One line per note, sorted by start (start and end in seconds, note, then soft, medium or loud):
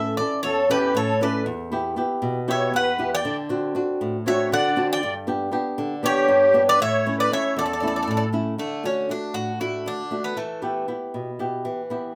0.00 0.18 A2 medium
0.00 0.18 C#4 medium
0.00 0.18 E4 soft
0.00 0.19 A4 medium
0.00 0.17 E5 loud
0.17 0.60 C#4 soft
0.17 0.60 E4 soft
0.17 0.61 A4 medium
0.17 0.42 D5 medium
0.43 0.94 E2 medium
0.43 0.69 A4 medium
0.43 0.68 C#5 medium
0.69 1.11 C#4 medium
0.69 1.11 E4 soft
0.69 0.94 G4 medium
0.69 1.11 A4 medium
0.69 0.97 B4 medium
0.95 1.45 A2 medium
0.95 1.20 A4 medium
0.95 1.20 C#5 medium
1.21 1.42 C#4 soft
1.21 1.42 E4 soft
1.21 1.42 A4 medium
1.21 1.45 B4 medium
1.21 1.46 D5 medium
1.46 1.96 E2 medium
1.72 1.95 B3 medium
1.72 1.96 E4 soft
1.72 1.96 G4 medium
1.96 2.37 B3 soft
1.96 2.38 E4 soft
1.96 2.38 G4 soft
2.22 2.72 B2 medium
2.48 2.89 B3 soft
2.48 2.89 E4 soft
2.48 2.89 G4 medium
2.48 2.72 C#5 medium
2.48 2.73 E5 medium
2.74 3.23 E2 medium
2.74 3.10 B4 medium
2.74 3.14 F#5 medium
2.98 3.19 B3 medium
2.98 3.19 E4 soft
2.98 3.19 G4 medium
3.14 3.37 D5 medium
3.14 3.37 G5 loud
3.25 3.74 D3 medium
3.49 3.73 C4 soft
3.49 3.74 D4 soft
3.49 3.74 F#4 medium
3.75 4.16 C4 soft
3.75 4.16 D4 soft
3.75 4.16 F#4 medium
4.01 4.50 A2 medium
4.26 4.67 C4 soft
4.26 4.67 D4 medium
4.26 4.67 F#4 medium
4.26 4.50 C#5 medium
4.26 4.53 E5 medium
4.52 5.01 D3 medium
4.52 4.87 D5 medium
4.52 4.92 F#5 loud
4.76 4.97 C4 soft
4.76 4.97 D4 soft
4.76 4.97 F#4 medium
4.91 5.14 D5 medium
4.91 5.15 G5 medium
5.03 5.52 G2 medium
5.27 5.50 B3 soft
5.27 5.51 D4 soft
5.27 5.51 G4 medium
5.51 5.93 B3 soft
5.51 5.93 D4 soft
5.51 5.93 G4 medium
5.78 6.28 D3 medium
6.03 6.44 B3 medium
6.03 6.44 D4 soft
6.03 6.63 G4 medium
6.03 6.45 G4 medium
6.03 6.69 C#5 loud
6.28 6.78 G2 medium
6.54 6.75 B3 soft
6.54 6.75 D4 soft
6.54 6.75 G4 medium
6.67 6.79 B4 medium
6.67 6.80 D5 loud
6.80 7.30 A2 medium
6.80 7.16 C#5 medium
6.80 7.17 E5 loud
7.06 7.30 A3 medium
7.06 7.31 C#4 soft
7.06 7.31 E4 medium
7.18 7.30 B4 medium
7.18 7.31 D5 medium
7.31 7.72 A3 soft
7.31 7.72 C#4 soft
7.31 7.73 E4 soft
7.31 7.55 C#5 medium
7.31 7.56 E5 medium
7.57 8.06 E2 medium
7.57 8.29 A4 medium
7.57 7.64 D5 medium
7.66 7.72 D5 medium
7.73 7.79 D5 medium
7.80 8.23 A3 soft
7.80 8.23 C#4 soft
7.80 8.23 E4 medium
7.80 7.87 D5 soft
7.88 7.94 D5 medium
7.96 8.01 D5 soft
8.03 8.09 D5 medium
8.08 8.57 A2 medium
8.08 8.16 D5 medium
8.17 8.24 D5 medium
8.33 8.53 A3 soft
8.33 8.54 C#4 soft
8.33 8.54 E4 medium
8.58 9.08 D3 medium
8.58 8.83 A3 medium
8.83 9.08 A3 soft
8.83 9.09 C#4 medium
8.83 9.08 D4 soft
8.83 9.09 F#4 soft
9.09 9.50 A3 soft
9.09 9.50 D4 soft
9.09 9.34 D4 medium
9.09 9.51 F#4 soft
9.34 9.84 A2 medium
9.34 9.60 F#4 medium
9.60 10.01 A3 soft
9.60 10.01 D4 soft
9.60 9.87 E4 medium
9.60 10.01 F#4 soft
9.86 10.36 D3 medium
9.86 10.22 D4 medium
10.11 10.31 A3 soft
10.11 10.32 D4 soft
10.11 10.32 F#4 soft
10.24 10.36 B3 medium
10.37 10.86 E3 medium
10.37 10.85 A3 medium
10.62 10.87 B3 soft
10.62 10.87 E4 soft
10.62 10.87 G4 soft
10.88 11.29 B3 soft
10.88 11.29 E4 soft
10.88 11.29 G4 soft
11.14 11.64 B2 medium
11.39 11.80 B3 soft
11.39 11.80 E4 soft
11.39 11.81 G4 soft
11.65 12.14 E3 medium
11.90 12.11 B3 soft
11.90 12.11 E4 soft
11.90 12.11 G4 soft